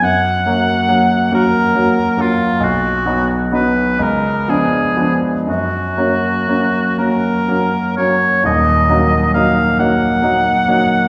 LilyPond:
<<
  \new Staff \with { instrumentName = "Oboe" } { \time 6/8 \key fis \major \tempo 4. = 44 fis''4. ais'4 eis'8 | fis'4 b'8 ais'8 gis'8 r8 | fis'4. ais'4 cis''8 | \key ees \minor ees''4 f''8 ges''4. | }
  \new Staff \with { instrumentName = "Grand piano" } { \time 6/8 \key fis \major fis,8 <fis ais fis'>8 <fis ais fis'>8 <fis ais fis'>8 <fis ais fis'>8 <fis ais fis'>8 | b,,8 <fis b dis'>8 <fis b dis'>8 cis,8 <eis b d'>8 <eis b d'>8 | fis,8 <fis ais cis'>8 <fis ais cis'>8 <fis ais cis'>8 <fis ais cis'>8 <fis ais cis'>8 | \key ees \minor <ees,, ees,>8 <ges bes ees'>8 <ges bes ees'>8 <ges bes ees'>8 <ges bes ees'>8 <ges bes ees'>8 | }
>>